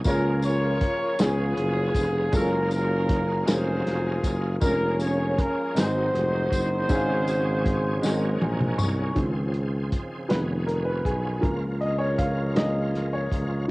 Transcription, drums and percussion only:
0.04 kick, closed hi-hat, tambourine
0.43 closed hi-hat, tambourine
0.81 kick, closed hi-hat
1.19 snare, closed hi-hat, tambourine
1.57 closed hi-hat
1.95 kick, closed hi-hat, tambourine
2.33 kick, closed hi-hat, tambourine
2.71 closed hi-hat, tambourine
3.09 kick, closed hi-hat
3.48 snare, closed hi-hat, tambourine
3.87 snare, closed hi-hat
4.24 kick, closed hi-hat, tambourine
4.61 kick, closed hi-hat, tambourine
5.00 closed hi-hat, tambourine
5.38 kick, closed hi-hat
5.76 snare, closed hi-hat, tambourine
6.15 closed hi-hat
6.52 kick, closed hi-hat, tambourine
6.89 kick, closed hi-hat, tambourine
7.28 closed hi-hat, tambourine
7.66 kick, closed hi-hat
8.03 snare, tambourine
8.42 high tom
8.60 mid tom
8.79 mid tom, tambourine
9.16 kick, closed hi-hat
9.54 closed hi-hat
9.92 kick, closed hi-hat
10.30 snare, closed hi-hat
10.68 closed hi-hat
11.05 kick, closed hi-hat
11.43 kick, closed hi-hat
11.82 closed hi-hat
12.19 kick, closed hi-hat
12.56 snare, closed hi-hat
12.95 snare, closed hi-hat
13.32 kick, closed hi-hat

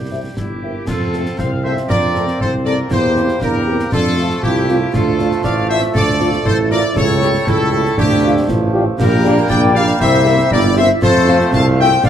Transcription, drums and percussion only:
0.37 concert bass drum, snare
0.87 concert bass drum, snare, crash
1.13 snare
1.26 snare
1.39 concert bass drum, snare
1.77 snare
1.90 concert bass drum, snare
2.15 snare
2.28 snare
2.40 concert bass drum
2.66 snare
2.91 concert bass drum, snare, crash
3.16 snare
3.29 snare
3.41 concert bass drum, snare
3.79 snare
3.92 concert bass drum, snare
4.18 snare
4.30 snare
4.43 concert bass drum
4.69 snare
4.94 concert bass drum, snare, crash
5.19 snare
5.32 snare
5.44 concert bass drum, snare
5.82 snare
5.95 concert bass drum, snare
6.20 snare
6.33 snare
6.45 concert bass drum
6.71 snare
6.96 concert bass drum, snare, crash
7.22 snare
7.34 snare
7.47 concert bass drum, snare
7.85 snare
7.98 concert bass drum, snare
8.49 concert bass drum, snare
9.00 concert bass drum, snare, crash
9.25 snare
9.37 snare
9.50 concert bass drum, snare
9.88 snare
10.00 concert bass drum, snare
10.26 snare
10.39 snare
10.51 concert bass drum
10.77 snare
11.02 concert bass drum, snare, crash
11.27 snare
11.41 snare
11.53 concert bass drum, snare
11.92 snare
12.04 concert bass drum, snare

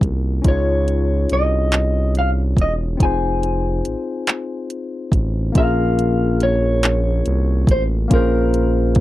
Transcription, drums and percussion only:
0.01 kick, closed hi-hat
0.44 kick, closed hi-hat
0.88 closed hi-hat
1.29 closed hi-hat
1.72 clap, closed hi-hat
2.15 closed hi-hat
2.57 kick, closed hi-hat
3.00 kick, closed hi-hat
3.43 closed hi-hat
3.85 closed hi-hat
4.27 clap, closed hi-hat
4.70 closed hi-hat
5.12 kick, closed hi-hat
5.55 kick, closed hi-hat
5.99 closed hi-hat
6.40 closed hi-hat
6.83 clap, closed hi-hat
7.26 closed hi-hat
7.67 kick, closed hi-hat
8.11 kick, closed hi-hat
8.54 closed hi-hat
8.95 kick, closed hi-hat

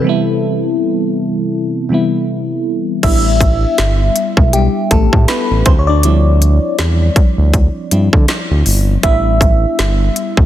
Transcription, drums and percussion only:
3.03 kick, closed hi-hat, crash
3.41 kick, closed hi-hat
3.78 snare, closed hi-hat
4.16 closed hi-hat
4.37 kick
4.53 closed hi-hat
4.91 kick, closed hi-hat
5.13 kick
5.28 snare, closed hi-hat
5.66 kick, closed hi-hat
6.03 closed hi-hat
6.42 closed hi-hat
6.79 snare, closed hi-hat
7.16 kick, closed hi-hat
7.54 kick, closed hi-hat
7.91 closed hi-hat
8.13 kick
8.28 snare, closed hi-hat
8.66 open hi-hat
9.03 kick, closed hi-hat
9.41 kick, closed hi-hat
9.79 snare, closed hi-hat
10.16 closed hi-hat
10.37 kick

